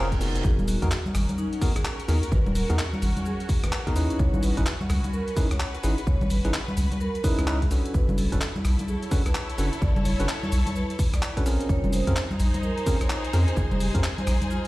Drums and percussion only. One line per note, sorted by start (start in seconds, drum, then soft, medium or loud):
0.12 kick medium
0.12 closed hi-hat medium
0.12 cabasa soft
0.21 open hi-hat loud
0.21 cabasa medium
0.35 closed hi-hat medium
0.35 cabasa soft
0.44 kick loud
0.44 cabasa soft
0.59 high conga medium
0.59 cabasa soft
0.68 open hi-hat loud
0.68 cabasa medium
0.82 kick medium
0.82 closed hi-hat medium
0.82 cabasa soft
0.91 clap loud
0.91 cabasa soft
1.06 high conga medium
1.06 cabasa soft
1.15 cross-stick medium
1.15 open hi-hat loud
1.15 cabasa medium
1.29 closed hi-hat medium
1.29 high conga medium
1.29 cabasa soft
1.38 cabasa soft
1.53 closed hi-hat medium
1.53 cabasa soft
1.61 kick loud
1.61 open hi-hat loud
1.61 cabasa medium
1.76 cross-stick medium
1.76 closed hi-hat medium
1.76 cabasa soft
1.85 clap loud
1.85 cabasa soft
2.00 closed hi-hat medium
2.00 cabasa soft
2.09 open hi-hat loud
2.09 cabasa medium
2.23 closed hi-hat medium
2.23 cabasa soft
2.32 kick loud
2.32 cabasa soft
2.46 high conga medium
2.46 cabasa soft
2.55 open hi-hat loud
2.55 cabasa medium
2.70 closed hi-hat medium
2.70 cabasa soft
2.79 clap loud
2.79 cabasa soft
2.93 high conga medium
2.93 cabasa soft
3.02 open hi-hat medium
3.02 cabasa medium
3.17 closed hi-hat medium
3.17 high conga medium
3.17 cabasa soft
3.26 cabasa soft
3.40 closed hi-hat medium
3.40 cabasa soft
3.49 kick loud
3.49 open hi-hat loud
3.49 cabasa medium
3.64 cross-stick medium
3.64 closed hi-hat medium
3.64 cabasa soft
3.73 clap loud
3.73 cabasa soft
3.87 kick medium
3.87 closed hi-hat soft
3.87 cabasa soft
3.96 open hi-hat loud
3.96 cabasa medium
4.10 closed hi-hat medium
4.10 cabasa soft
4.19 kick loud
4.19 cabasa soft
4.34 high conga medium
4.34 cabasa soft
4.43 open hi-hat loud
4.43 cabasa medium
4.57 kick medium
4.57 closed hi-hat medium
4.57 cabasa soft
4.66 clap loud
4.66 cabasa soft
4.81 high conga medium
4.81 cabasa soft
4.90 cross-stick medium
4.90 open hi-hat medium
4.90 cabasa medium
5.04 closed hi-hat medium
5.04 high conga medium
5.04 cabasa soft
5.13 cabasa soft
5.28 closed hi-hat medium
5.28 cabasa soft
5.37 kick loud
5.37 open hi-hat loud
5.37 cabasa medium
5.51 cross-stick medium
5.51 closed hi-hat medium
5.51 cabasa soft
5.60 clap loud
5.60 cabasa soft
5.75 closed hi-hat medium
5.75 cabasa soft
5.84 open hi-hat medium
5.84 cabasa medium
5.98 closed hi-hat medium
5.98 cabasa soft
6.07 kick loud
6.07 cabasa soft
6.21 high conga medium
6.21 cabasa soft
6.30 open hi-hat loud
6.30 cabasa medium
6.45 closed hi-hat medium
6.45 cabasa soft
6.54 clap loud
6.54 cabasa soft
6.68 high conga medium
6.68 cabasa soft
6.77 open hi-hat medium
6.77 cabasa medium
6.92 closed hi-hat medium
6.92 high conga medium
6.92 cabasa soft
7.01 cabasa soft
7.15 closed hi-hat medium
7.15 cabasa soft
7.24 kick loud
7.24 open hi-hat loud
7.24 cabasa medium
7.39 cross-stick medium
7.39 closed hi-hat medium
7.39 cabasa soft
7.48 clap loud
7.48 cabasa soft
7.62 kick medium
7.62 closed hi-hat medium
7.62 cabasa soft
7.71 open hi-hat medium
7.71 cabasa medium
7.85 closed hi-hat medium
7.85 cabasa soft
7.94 kick loud
7.94 cabasa soft
8.09 high conga medium
8.09 cabasa soft
8.18 open hi-hat loud
8.18 cabasa medium
8.32 kick medium
8.32 closed hi-hat medium
8.32 cabasa soft
8.41 clap loud
8.41 cabasa soft
8.56 high conga medium
8.56 cabasa soft
8.65 cross-stick medium
8.65 open hi-hat medium
8.65 cabasa medium
8.79 closed hi-hat medium
8.79 high conga medium
8.79 cabasa soft
8.88 cabasa soft
9.03 closed hi-hat medium
9.03 cabasa soft
9.11 kick loud
9.11 open hi-hat loud
9.11 cabasa medium
9.26 cross-stick medium
9.26 closed hi-hat medium
9.26 cabasa soft
9.35 clap loud
9.35 cabasa soft
9.49 closed hi-hat medium
9.49 cabasa soft
9.58 open hi-hat medium
9.58 cabasa medium
9.73 closed hi-hat medium
9.73 cabasa soft
9.82 kick loud
9.82 cabasa soft
9.96 high conga medium
9.96 cabasa soft
10.05 open hi-hat loud
10.05 cabasa medium
10.20 closed hi-hat medium
10.20 cabasa soft
10.29 clap loud
10.29 cabasa soft
10.43 high conga medium
10.43 cabasa soft
10.52 open hi-hat medium
10.52 cabasa medium
10.67 closed hi-hat medium
10.67 high conga medium
10.67 cabasa soft
10.76 cabasa soft
10.90 closed hi-hat medium
10.90 cabasa soft
10.99 kick loud
10.99 open hi-hat loud
10.99 cabasa medium
11.14 cross-stick medium
11.14 closed hi-hat medium
11.14 cabasa soft
11.23 clap loud
11.23 cabasa soft
11.37 kick medium
11.37 closed hi-hat medium
11.37 cabasa soft
11.46 open hi-hat medium
11.46 cabasa medium
11.60 closed hi-hat medium
11.60 cabasa soft
11.69 kick loud
11.69 cabasa soft
11.84 high conga medium
11.84 cabasa soft
11.93 open hi-hat loud
11.93 cabasa medium
12.07 kick medium
12.07 closed hi-hat medium
12.07 cabasa soft
12.16 clap loud
12.16 cabasa soft
12.31 high conga medium
12.31 cabasa soft
12.40 open hi-hat loud
12.40 cabasa medium
12.54 closed hi-hat medium
12.54 high conga medium
12.54 cabasa soft
12.63 cabasa soft
12.78 closed hi-hat medium
12.78 cabasa soft
12.86 kick loud
12.86 open hi-hat loud
12.86 cabasa medium
13.01 cross-stick medium
13.01 closed hi-hat medium
13.01 cabasa soft
13.10 clap loud
13.10 cabasa soft
13.24 closed hi-hat medium
13.24 cabasa soft
13.33 open hi-hat loud
13.33 cabasa medium
13.48 closed hi-hat medium
13.48 cabasa soft
13.57 kick loud
13.57 cabasa soft
13.71 high conga medium
13.71 cabasa soft
13.80 open hi-hat loud
13.80 cabasa medium
13.95 kick medium
13.95 closed hi-hat medium
13.95 cabasa soft
14.04 clap loud
14.04 cabasa soft
14.18 closed hi-hat soft
14.18 high conga medium
14.18 cabasa soft
14.27 cross-stick medium
14.27 open hi-hat loud
14.27 cabasa medium
14.42 closed hi-hat medium
14.42 high conga medium
14.42 cabasa soft
14.51 cabasa soft